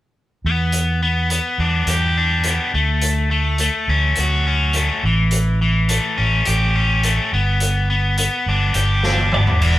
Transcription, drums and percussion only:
0.72 closed hi-hat medium
1.30 closed hi-hat medium
1.87 closed hi-hat medium
2.43 closed hi-hat medium
3.01 closed hi-hat medium
3.58 closed hi-hat medium
4.15 closed hi-hat medium
4.73 closed hi-hat medium
5.31 closed hi-hat medium
5.89 closed hi-hat medium
6.45 closed hi-hat medium
7.03 closed hi-hat medium
7.60 closed hi-hat medium
8.17 closed hi-hat medium
8.74 closed hi-hat medium
9.03 snare soft
9.18 high tom soft
9.32 mid tom medium
9.47 floor tom medium
9.62 crash medium

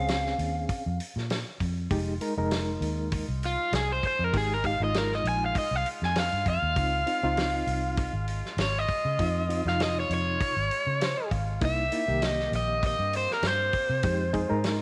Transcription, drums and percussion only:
0.08 snare loud
0.08 open hi-hat medium
0.26 snare soft
0.39 open hi-hat soft
0.69 kick loud
0.69 open hi-hat medium
1.00 open hi-hat medium
1.18 snare soft
1.30 snare loud
1.30 open hi-hat medium
1.60 kick medium
1.60 open hi-hat medium
1.91 kick loud
1.91 open hi-hat medium
2.21 open hi-hat medium
2.51 snare loud
2.51 open hi-hat medium
2.82 open hi-hat medium
3.12 kick loud
3.12 open hi-hat medium
3.43 open hi-hat medium
3.73 snare loud
3.73 open hi-hat medium
4.03 kick medium
4.03 open hi-hat soft
4.34 kick loud
4.34 open hi-hat medium
4.64 kick medium
4.64 open hi-hat medium
4.94 snare loud
4.94 open hi-hat medium
5.12 snare soft
5.25 open hi-hat soft
5.55 kick loud
5.55 open hi-hat medium
5.86 open hi-hat soft
6.03 snare soft
6.15 snare loud
6.15 open hi-hat medium
6.46 kick medium
6.46 open hi-hat medium
6.76 kick loud
6.76 open hi-hat medium
7.07 open hi-hat medium
7.37 snare loud
7.37 open hi-hat medium
7.67 open hi-hat medium
7.97 kick loud
7.97 open hi-hat medium
8.28 open hi-hat medium
8.45 snare soft
8.58 snare loud
8.58 open hi-hat medium
8.88 kick medium
8.88 open hi-hat medium
9.19 kick loud
9.19 open hi-hat medium
9.50 open hi-hat medium
9.67 snare soft
9.80 snare loud
9.80 open hi-hat medium
10.11 open hi-hat soft
10.41 kick loud
10.41 open hi-hat medium
10.71 open hi-hat soft
11.01 snare loud
11.01 open hi-hat medium
11.31 kick medium
11.31 open hi-hat soft
11.61 kick loud
11.61 open hi-hat medium
11.92 open hi-hat medium
12.22 snare loud
12.22 open hi-hat medium
12.40 snare soft
12.53 open hi-hat soft
12.83 kick loud
12.83 open hi-hat medium
13.13 open hi-hat medium
13.31 snare soft
13.43 snare loud
13.43 open hi-hat medium
13.73 kick medium
13.73 open hi-hat medium
14.03 kick loud
14.03 open hi-hat medium
14.33 kick medium
14.33 open hi-hat medium
14.64 snare loud
14.64 open hi-hat medium

